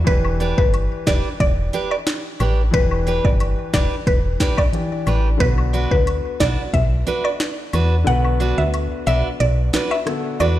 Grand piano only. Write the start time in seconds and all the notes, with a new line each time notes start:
0.04 E3 D4 G4
0.09 B4
2.71 E3 D4 G4
2.76 B4
4.72 E3 D4 G4 D5
5.38 D3 B3 F#4
5.43 B4
8.04 D3 B3 F#4
8.09 B4
10.06 D3 B3 F#4 A4